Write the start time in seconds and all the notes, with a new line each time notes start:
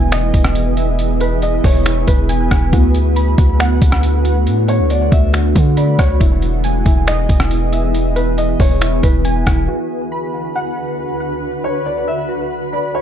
Already playing: E1 E3 B3 E4 G#4 G#5
0.12 D#5, finger snap, closed hi-hat
0.34 E1, kick, closed hi-hat
0.44 cross-stick
0.55 closed hi-hat
0.77 E5, closed hi-hat
0.99 closed hi-hat
1.21 B4, closed hi-hat
1.42 D#5, closed hi-hat
1.64 E1 C#5, kick, open hi-hat
1.86 E4, finger snap, closed hi-hat
2.07 E1 B4, kick, closed hi-hat
2.29 G#5, closed hi-hat
2.51 E1, kick, cross-stick, closed hi-hat
2.73 D2 D3 A3 F#4, kick, closed hi-hat
2.95 closed hi-hat
3.16 B5, closed hi-hat
3.38 D2 F#4, kick, closed hi-hat
3.60 F#5, finger snap, closed hi-hat
3.82 D2, kick, closed hi-hat
3.92 cross-stick
4.03 closed hi-hat
4.25 F#5, closed hi-hat
4.47 A2, closed hi-hat
4.68 C#5, closed hi-hat
4.79 D2
4.90 D5, closed hi-hat
5.12 D2 E5, kick, closed hi-hat
5.33 F#4, finger snap, closed hi-hat
5.56 D3, kick, closed hi-hat
5.77 D5 B5, closed hi-hat
5.99 D2 C#5, kick, cross-stick, closed hi-hat
6.20 E1 E3 B3 E4 G#4, kick, closed hi-hat
6.42 closed hi-hat
6.64 G#5, closed hi-hat
6.86 E1 E4, kick, closed hi-hat
7.07 D#5, finger snap, closed hi-hat
7.29 E1, kick, closed hi-hat
7.40 cross-stick
7.51 closed hi-hat
7.73 E5, closed hi-hat
7.95 closed hi-hat
8.16 B4, closed hi-hat
8.38 D#5, closed hi-hat
8.60 E1 C#5, kick, open hi-hat
8.81 E4, finger snap, closed hi-hat
9.03 E1 B4, kick, closed hi-hat
9.25 G#5, closed hi-hat
9.47 E1, kick, cross-stick, closed hi-hat
9.68 D2 D3 F#4 B4
10.12 B5
10.34 F#4
10.55 F#5
11.20 F#5
11.64 C#5
11.86 D5
12.08 E5
12.29 F#4
12.73 D5 B5
12.95 C#5